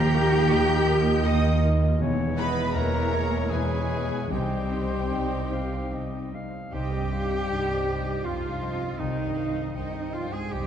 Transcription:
Already playing: D#2 D#3 F3 A#3 F4 G4 A#4 C5 F5 G5 A#5 G6
0.14 D#4 F4 A#4
0.33 F4
0.51 D#2 D#3 D#5
0.70 F5
0.88 D#4 F4 A#4
1.24 D#2 D#3 D#4 A#4 D#5 G5 D#6
1.63 D#4 F4 A#4
1.83 A#3
2.00 E1 E2 E3 G#3 E4 C#5
2.20 B2
2.37 B3 E4 G#4 B4 D#5 B5
2.58 G#4
2.74 E1 E2 G#3 A#3 A#4 B4 C#5 E5 A#5
2.95 G#5
3.12 B2 E4 G#4 C#5
3.33 E5
3.50 E1 E2 G#3 G#4 B4 G#5
3.71 G#4
3.90 B3 E4 G#4
4.11 B3
4.30 C2 C3 G3 C4 D#4 G4 C5 D#5 G5
4.52 G3
4.72 C4 D#4 C5
5.11 C2 C3 C5 D#5
5.32 D#5
5.51 C4 D#4 C5 F5 C6
5.73 C5
5.92 C2 C3 D#4 D#5
6.13 C4
6.32 G3 C4 D#4 C5 F5
6.53 C4
6.71 C2 C3 G3 D#4 G4 C5 D#5 G5
6.93 C4 G4 D#5
6.97 G2
7.12 C4 D#4 C5 F5 G5
7.24 D#4
7.31 C4 G4 D#5
7.50 C2 G2 D#4 C5 D#5 G5
7.69 C4 G4 D#5
7.75 C5
7.87 D#4 C5 D#5 G5
7.99 G2
8.06 C4 G4 D#5
8.24 C2 F2 F3 D#4 F4 C5 F5 G5
8.43 C4 G4 D#5
8.49 G2
8.62 D#4 C5 D#5 G5
8.74 C4
8.81 C4 G4 D#5
8.99 C2 C3 D#3 D#4 C5 D#5 G5
9.18 C4 G4 D#5
9.26 G2
9.37 C4 D#4 C5 F5 G5
9.50 D#4
9.56 C4 G4 D#5
9.75 C2 G2 D#3 D#4 C5 D#5 G5
9.95 C4 G4 D#5
10.01 C5
10.13 F3 D#4 F4 C5 F5 G5
10.28 G2
10.32 G#3 C4 G4 G#4 D#5 G#5
10.51 C2 F2 G3 D#4 G4 C5 D#5 G5

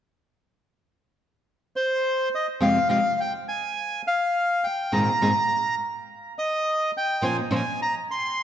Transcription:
1.76 C5
2.35 D#5
2.60 F2 C3 F3 G#3 C4 G4 F5
2.89 F2 C3 F3 G#3 C4 G4 F5
3.20 G5
3.48 G#5
4.07 F5
4.64 G5
4.92 G#2 A#2 D#3 G#3 C4 G#4 A#5
5.21 G#2 A#2 D#3 G#3 C4 G#4
6.39 D#5
6.97 G5
7.22 A#2 F3 A#3 C#4 F4 C5 G#5
7.51 A#2 F3 A#3 C#4 F4 C5
7.56 G#5
7.82 A#5
8.11 C6

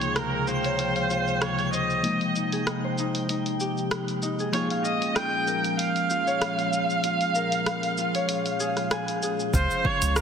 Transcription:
Already playing: C#2 C3 C#3 F3 G#3 A#3 D#4 F4 G#4 C#5 F5 G5 C6
0.01 open hi-hat, shaker
0.16 A#4, cross-stick, open hi-hat, shaker
0.47 F4 C5, shaker
0.64 C#5, open hi-hat, shaker
0.79 F4, open hi-hat, shaker
0.96 F5, open hi-hat, shaker
1.10 F4, shaker
1.27 shaker
1.41 F4 C#5, cross-stick, open hi-hat, shaker
1.59 open hi-hat, shaker
1.73 C5 D#5, shaker
1.90 shaker
2.01 C3 F3 G#3 A#3 D#4 G5, open hi-hat, shaker
2.21 open hi-hat
2.36 D#4, shaker
2.52 G#4, open hi-hat, shaker
2.67 D#4, cross-stick, open hi-hat, shaker
2.84 C5
2.98 D#4, shaker
3.15 open hi-hat, shaker
3.29 D#4, open hi-hat, shaker
3.46 open hi-hat, shaker
3.60 G4, shaker
3.78 shaker
3.91 cross-stick, open hi-hat, shaker
4.08 open hi-hat, shaker
4.22 D#4, shaker
4.39 G#4, shaker
4.52 A#2 F3 A#3 C#4 D#4 F4 G#4 C#5, open hi-hat, shaker
4.56 G#4
4.70 F5, open hi-hat
4.84 F4 D#5, shaker
5.02 open hi-hat, shaker
5.15 F4 G5, cross-stick, open hi-hat, shaker
5.47 A#4, shaker
5.64 open hi-hat, shaker
5.77 F5, open hi-hat, shaker
5.96 open hi-hat, shaker
6.10 F4, shaker
6.27 C#5, shaker
6.41 F4, cross-stick, open hi-hat, shaker
6.59 F5, open hi-hat, shaker
6.73 F4, shaker
6.90 shaker
7.04 F4, open hi-hat, shaker
7.21 open hi-hat, shaker
7.35 A#4, shaker
7.52 open hi-hat, shaker
7.66 cross-stick, open hi-hat, shaker
7.83 open hi-hat, shaker
7.98 F4, shaker
8.15 C#5, open hi-hat, shaker
8.29 F4, open hi-hat, shaker
8.46 F5, open hi-hat, shaker
8.60 G#4, shaker
8.77 F4, cross-stick, open hi-hat, shaker
8.91 G#5, cross-stick, open hi-hat, shaker
9.08 open hi-hat, shaker
9.23 G#4, shaker
9.40 shaker
9.54 C#2 C#3 F3 G#3 C#4 F4 C5, kick, shaker
9.71 shaker
9.85 C#5 C6, kick
10.02 C#2, open hi-hat, shaker
10.16 A#4, cross-stick, shaker

